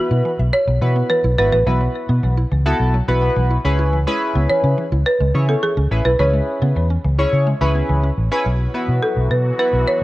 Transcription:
0.00 0.32 B3 loud
0.00 0.32 E4 medium
0.00 0.32 F#4 medium
0.00 0.55 F#4 medium
0.00 0.32 B4 loud
0.11 0.21 B2 medium
0.11 0.22 E4 medium
0.25 0.36 E3 medium
0.39 0.49 B1 medium
0.39 0.50 E5 medium
0.53 1.06 C#5 loud
0.68 0.78 B1 loud
0.68 0.79 F#3 medium
0.81 1.02 B2 loud
0.81 0.93 E3 medium
0.81 1.20 B3 medium
0.81 1.21 E4 medium
0.81 1.21 F#4 medium
0.81 1.21 B4 medium
0.96 1.07 B3 medium
1.10 1.21 E3 medium
1.10 1.36 B4 medium
1.24 1.34 B1 loud
1.24 1.35 E4 medium
1.38 1.48 G#1 medium
1.38 1.58 B3 medium
1.38 1.58 E4 medium
1.38 1.58 F#4 medium
1.38 1.51 B4 medium
1.38 1.58 B4 medium
1.52 1.62 A1 medium
1.52 2.33 B4 medium
1.52 1.63 E5 loud
1.66 1.87 B1 loud
1.66 1.78 E3 medium
1.66 2.34 B3 medium
1.66 2.35 E4 medium
1.66 2.35 F#4 medium
1.66 2.35 B4 medium
1.81 1.92 F#3 medium
2.09 2.19 B2 medium
2.09 2.20 B3 medium
2.23 2.43 B1 loud
2.23 2.34 E3 medium
2.37 2.48 E4 medium
2.51 2.71 C#2 medium
2.51 2.62 E3 medium
2.65 2.95 B3 medium
2.65 2.95 E4 medium
2.65 2.95 F#4 medium
2.65 2.95 A4 loud
2.65 2.77 E5 medium
2.80 3.00 B1 medium
2.94 3.05 F#3 medium
3.08 3.28 B1 medium
3.08 3.19 E3 medium
3.08 3.57 B3 loud
3.08 3.57 E4 medium
3.08 3.57 F#4 medium
3.08 3.57 B4 loud
3.22 3.33 B3 medium
3.36 3.56 B1 medium
3.36 3.47 E3 medium
3.50 3.62 E4 medium
3.64 4.05 C#2 medium
3.64 3.99 C#4 medium
3.64 3.99 E4 medium
3.64 3.99 G#4 medium
3.64 3.99 B4 loud
3.79 3.90 E4 medium
3.93 4.04 E3 medium
4.07 4.18 G#3 medium
4.07 4.85 C#4 loud
4.07 4.85 E4 loud
4.07 4.85 G#4 medium
4.07 4.85 B4 loud
4.35 4.45 C#2 medium
4.35 4.46 B3 medium
4.50 4.61 E3 medium
4.50 5.02 C#5 loud
4.64 4.74 C#3 loud
4.64 4.75 C#4 medium
4.78 4.89 E3 medium
4.92 5.02 C#2 medium
4.92 5.03 E4 medium
5.06 5.46 B4 loud
5.20 5.30 C#2 loud
5.20 5.31 G#3 medium
5.34 5.54 C#3 medium
5.34 5.46 E3 medium
5.34 5.73 C#4 medium
5.34 5.73 E4 medium
5.34 5.73 G#4 medium
5.34 5.74 C#5 medium
5.49 5.60 B3 medium
5.49 5.63 A4 medium
5.63 5.74 E3 medium
5.63 6.07 G#4 medium
5.77 5.87 C#2 medium
5.77 5.88 C#4 medium
5.91 6.01 A1 medium
5.91 6.11 C#4 medium
5.91 6.11 E4 medium
5.91 6.11 G#4 medium
5.91 6.11 B4 medium
6.05 6.15 B1 medium
6.05 6.16 E4 loud
6.05 6.12 B4 loud
6.19 6.39 C#2 loud
6.19 6.30 E3 medium
6.19 6.87 C#4 medium
6.19 6.87 E4 medium
6.19 6.88 G#4 medium
6.19 6.88 B4 medium
6.19 7.85 C#5 medium
6.34 6.45 G#3 medium
6.62 6.72 C#3 medium
6.62 6.73 B3 medium
6.76 6.96 E2 medium
6.76 6.87 E3 medium
6.90 7.01 C#4 medium
7.04 7.24 C#2 medium
7.04 7.15 E3 medium
7.18 7.48 C#4 loud
7.18 7.29 E4 medium
7.18 7.48 E4 medium
7.18 7.48 G#4 medium
7.18 7.48 C#5 loud
7.33 7.53 C#3 loud
7.47 7.58 G#3 medium
7.61 7.81 C#2 medium
7.61 7.72 E3 medium
7.61 8.09 C#4 medium
7.61 8.10 E4 medium
7.61 8.10 G#4 medium
7.61 8.10 B4 loud
7.75 7.86 B3 medium
7.89 8.09 C#2 medium
7.89 8.00 E3 medium
8.03 8.14 C#4 medium
8.18 8.28 A1 loud
8.31 8.46 C#4 loud
8.31 8.46 E4 medium
8.31 8.43 E4 medium
8.31 8.46 G#4 medium
8.31 8.46 B4 loud
8.46 8.66 B1 loud
8.46 10.04 E3 medium
8.46 10.04 F#3 medium
8.46 10.04 B3 medium
8.46 10.04 F#4 medium
8.74 9.32 B3 medium
8.74 9.32 E4 medium
8.74 9.32 F#4 medium
8.74 9.33 B4 medium
8.88 8.98 B2 medium
9.03 9.32 A4 medium
9.17 9.27 B1 medium
9.31 9.51 B2 medium
9.31 9.57 B4 medium
9.59 10.04 B3 medium
9.59 10.04 E4 medium
9.59 10.04 F#4 medium
9.59 10.04 B4 medium
9.59 9.86 B4 medium
9.73 9.83 B1 medium
9.88 10.04 C#5 loud

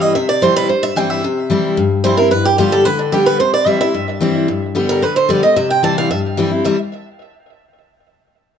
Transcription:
0.00 0.12 G2 medium
0.00 0.14 E3 medium
0.00 0.14 G3 medium
0.00 0.14 C4 medium
0.00 0.15 E4 medium
0.00 0.14 D#5 medium
0.15 0.67 C3 medium
0.15 0.28 E5 medium
0.29 0.42 D5 medium
0.42 0.68 E3 medium
0.42 0.68 G3 medium
0.42 0.68 C4 medium
0.42 0.69 E4 loud
0.42 0.55 C5 medium
0.56 0.69 B4 loud
0.69 1.21 G2 medium
0.69 0.82 C5 medium
0.83 0.97 E5 loud
0.96 1.22 E3 medium
0.96 1.22 G3 medium
0.96 1.23 C4 loud
0.96 1.23 E4 medium
0.96 1.10 G5 loud
1.10 1.77 E5 medium
1.24 1.75 C3 medium
1.50 1.76 E3 medium
1.50 1.76 G3 medium
1.50 1.76 C4 medium
1.50 1.77 E4 loud
1.77 2.29 G2 medium
2.04 2.17 E3 loud
2.04 2.18 G3 loud
2.04 2.18 C4 medium
2.04 2.16 E4 loud
2.04 2.17 C5 medium
2.17 2.32 C4 soft
2.17 2.31 E4 medium
2.17 2.31 A#4 medium
2.31 2.83 G2 medium
2.31 2.45 B4 medium
2.45 2.58 G4 medium
2.58 2.84 D3 medium
2.58 2.85 G3 medium
2.58 2.85 B3 medium
2.58 2.72 F4 medium
2.58 2.85 G4 loud
2.72 2.85 A4 loud
2.85 3.11 D3 medium
2.85 2.99 B4 loud
2.99 3.12 D4 soft
3.12 3.38 D3 medium
3.12 3.38 G3 medium
3.12 3.39 B3 loud
3.12 3.26 G4 medium
3.12 3.39 G4 loud
3.26 3.39 B4 medium
3.40 3.91 C3 medium
3.40 3.53 C5 medium
3.54 3.67 D5 medium
3.66 3.79 E3 medium
3.66 3.80 G3 medium
3.66 3.80 C4 medium
3.66 3.79 E4 medium
3.66 3.79 E5 loud
3.80 3.94 C4 soft
3.80 3.93 E4 medium
3.80 4.06 E5 loud
3.94 4.46 G2 medium
4.21 4.46 E3 medium
4.21 4.47 G3 medium
4.21 4.47 C4 medium
4.21 4.48 E4 loud
4.48 5.00 G2 medium
4.75 5.01 D3 medium
4.75 5.01 G3 medium
4.75 5.01 B3 medium
4.75 5.02 G4 medium
4.89 5.03 A#4 loud
5.02 5.28 D3 medium
5.02 5.16 B4 medium
5.16 5.29 C5 medium
5.29 5.42 D3 medium
5.29 5.43 G3 loud
5.29 5.43 B3 loud
5.29 5.42 G4 loud
5.29 5.43 D5 medium
5.43 5.57 B3 soft
5.43 5.56 G4 medium
5.43 5.56 D#5 medium
5.56 6.08 C3 medium
5.56 5.70 E5 medium
5.70 5.83 G5 medium
5.83 6.09 E3 medium
5.83 6.09 G3 medium
5.83 6.09 C4 medium
5.83 6.10 E4 loud
5.83 5.97 A5 loud
5.98 6.10 F5 medium
6.11 6.62 G2 medium
6.11 6.19 E5 medium
6.37 6.51 E3 medium
6.37 6.51 G3 medium
6.37 6.51 C4 loud
6.37 6.50 E4 loud
6.51 6.65 C4 soft
6.51 6.64 E4 medium
6.64 6.75 C3 medium
6.64 6.76 E3 medium
6.64 6.76 G3 medium
6.64 6.76 C4 medium
6.64 6.77 E4 medium
6.64 6.78 E5 medium

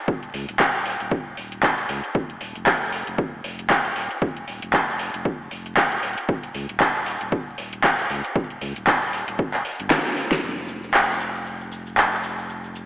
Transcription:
0.08 0.29 D#1 loud
0.08 kick loud
0.23 closed hi-hat medium
0.34 0.46 C#2 loud
0.34 open hi-hat loud
0.49 0.96 D#1 medium
0.49 closed hi-hat medium
0.59 kick loud
0.59 clap loud
0.85 open hi-hat loud
1.00 1.34 D#1 medium
1.00 closed hi-hat medium
1.11 kick loud
1.37 1.85 D#1 medium
1.37 open hi-hat loud
1.52 closed hi-hat medium
1.63 kick loud
1.63 clap loud
1.78 closed hi-hat medium
1.89 2.01 C#2 medium
1.89 open hi-hat loud
2.04 closed hi-hat medium
2.15 2.36 F1 loud
2.15 kick loud
2.30 closed hi-hat soft
2.41 2.53 D#1 loud
2.41 open hi-hat loud
2.55 3.03 F1 medium
2.55 closed hi-hat medium
2.66 kick loud
2.66 clap loud
2.92 open hi-hat loud
3.07 3.41 F1 medium
3.07 closed hi-hat medium
3.18 kick loud
3.44 3.92 F1 medium
3.44 open hi-hat loud
3.59 closed hi-hat medium
3.70 kick loud
3.70 clap loud
3.85 closed hi-hat medium
3.96 4.08 D#1 medium
3.96 open hi-hat loud
4.11 closed hi-hat medium
4.22 4.43 F1 loud
4.22 kick loud
4.37 closed hi-hat medium
4.48 4.59 D#1 loud
4.48 open hi-hat loud
4.62 5.09 F1 medium
4.62 closed hi-hat medium
4.73 kick loud
4.73 clap loud
4.99 open hi-hat loud
5.14 5.48 F1 medium
5.14 closed hi-hat medium
5.25 kick loud
5.51 5.99 F1 medium
5.51 open hi-hat loud
5.66 closed hi-hat medium
5.77 kick loud
5.77 clap loud
5.92 closed hi-hat medium
6.03 6.15 D#1 medium
6.03 open hi-hat loud
6.18 closed hi-hat medium
6.29 6.50 D#1 loud
6.29 kick loud
6.43 closed hi-hat medium
6.54 6.66 C#2 loud
6.54 open hi-hat loud
6.69 7.16 D#1 medium
6.69 closed hi-hat medium
6.80 kick loud
6.80 clap loud
7.06 open hi-hat loud
7.21 7.54 D#1 medium
7.21 closed hi-hat medium
7.32 kick loud
7.58 8.06 D#1 medium
7.58 open hi-hat loud
7.73 closed hi-hat medium
7.84 kick loud
7.84 clap loud
7.99 closed hi-hat medium
8.10 8.22 C#2 medium
8.10 open hi-hat loud
8.25 closed hi-hat medium
8.36 8.57 D#1 loud
8.36 kick loud
8.50 closed hi-hat medium
8.61 8.73 C#2 loud
8.61 open hi-hat loud
8.76 9.23 D#1 medium
8.76 closed hi-hat medium
8.87 kick loud
8.87 clap loud
9.02 closed hi-hat soft
9.13 open hi-hat loud
9.28 9.61 D#1 medium
9.28 closed hi-hat medium
9.39 kick loud
9.54 clap soft
9.65 open hi-hat loud
9.80 9.89 G1 loud
9.80 closed hi-hat medium
9.91 kick loud
9.91 snare loud
9.91 clap loud
10.05 closed hi-hat medium
10.17 open hi-hat medium
10.31 snare medium
10.31 closed hi-hat medium
10.42 12.86 F1 medium
10.42 cabasa soft
10.57 cabasa soft
10.69 cabasa medium
10.83 cabasa soft
10.94 clap loud
10.94 cabasa soft
11.09 cabasa soft
11.20 cabasa medium
11.35 cabasa soft
11.46 cabasa soft
11.61 cabasa soft
11.72 cabasa medium
11.87 cabasa soft
11.97 clap loud
11.97 cabasa soft
12.13 cabasa soft
12.24 cabasa medium
12.39 cabasa soft
12.50 cabasa soft
12.64 cabasa soft
12.75 cabasa medium

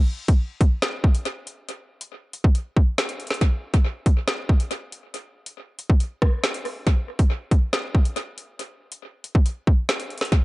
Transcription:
0.28 kick loud
0.28 closed hi-hat loud
0.61 kick loud
0.61 closed hi-hat medium
0.82 snare loud
1.04 kick medium
1.15 closed hi-hat medium
1.25 closed hi-hat medium
1.47 closed hi-hat medium
1.69 closed hi-hat medium
2.01 closed hi-hat medium
2.33 closed hi-hat medium
2.44 kick medium
2.55 closed hi-hat medium
2.77 kick medium
2.98 snare loud
3.09 closed hi-hat medium
3.20 closed hi-hat soft
3.27 snare medium
3.27 closed hi-hat medium
3.34 closed hi-hat medium
3.41 kick loud
3.41 closed hi-hat medium
3.74 kick loud
3.74 closed hi-hat medium
4.06 kick loud
4.06 closed hi-hat medium
4.28 snare loud
4.49 kick medium
4.60 closed hi-hat medium
4.71 closed hi-hat medium
4.92 closed hi-hat medium
5.14 closed hi-hat medium
5.46 closed hi-hat medium
5.79 closed hi-hat medium
5.90 kick medium
6.00 closed hi-hat medium
6.22 kick medium
6.22 cross-stick medium
6.44 snare loud
6.54 closed hi-hat medium
6.65 open hi-hat medium
6.87 kick loud
6.87 closed hi-hat medium
7.19 kick loud
7.19 closed hi-hat medium
7.51 kick medium
7.51 closed hi-hat medium
7.73 snare loud
7.95 kick medium
8.05 closed hi-hat medium
8.16 closed hi-hat medium
8.38 closed hi-hat medium
8.59 closed hi-hat medium
8.92 closed hi-hat medium
9.24 closed hi-hat medium
9.35 kick medium
9.46 closed hi-hat medium
9.67 kick medium
9.89 snare loud
10.00 closed hi-hat medium
10.10 closed hi-hat soft
10.18 snare medium
10.18 closed hi-hat medium
10.25 closed hi-hat medium
10.32 kick loud
10.32 closed hi-hat medium

